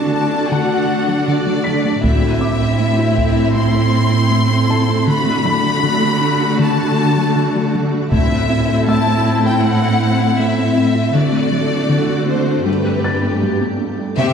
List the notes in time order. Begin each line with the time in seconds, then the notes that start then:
Already playing: D3 A3 D4 F#4 A4 A5
0.13 D4 A5
0.33 D4
0.51 D3 A4 F#5 A5
0.72 D4
1.09 F#3
1.27 D3 D5
1.47 F#3
1.64 F#3 B6
1.85 A3
2.03 A2 A3 C4 E4 A4 E5, taiko
2.23 E4
2.41 C4 D6
2.60 A4
2.80 A3
2.99 E4
3.18 A4, taiko
3.36 A4
3.56 A3 C6
3.74 A4
4.13 C4
4.31 A3
4.51 C4
4.69 C4 A4 A5
4.89 E4
5.07 D3 A3 D4 F#4 B5
5.26 A3
5.45 F#3 B5
5.64 D4
5.83 D3
6.02 A3
6.21 D4
6.40 D4
6.59 D3 A5
6.79 D4
7.17 F#3
7.36 D3
7.56 F#3
7.75 F#3
7.94 A3
8.11 A2 A3 C4 E4 A4 E5, taiko
8.31 E4
8.50 C4
8.69 A4
8.88 A3 E5 A5 E6
9.06 E4
9.26 A4
9.44 A4 G5
9.63 A3 F#5
9.82 A4
10.21 C4
10.39 A3 E5
10.59 C4
10.77 C4
10.95 E4
11.14 D3 A3 D4 F#4 D5
11.33 A3
11.52 F#3
11.71 D4
11.89 D3
12.09 A3
12.28 D4 C5
12.47 D4
12.66 G2 G3 G4 B4
12.85 G4
13.04 A6
13.23 B3
13.43 G3
13.61 B3
13.80 B3
13.99 D4
14.17 C3 G3 C4 G4 C5 E5